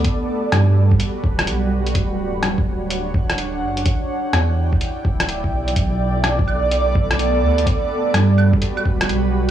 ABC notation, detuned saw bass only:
X:1
M:4/4
L:1/16
Q:"Swing 16ths" 1/4=126
K:Glyd
V:1 name="Detuned saw bass" clef=bass
z4 G,,4 z2 D,,,2 B,,,4 | D,,,12- D,,,2 F,,,2 | z4 E,,4 z2 D,,,3 B,,,3 | B,,,12- B,,,2 D,,2 |
z4 G,,4 z2 D,,,2 B,,,4 |]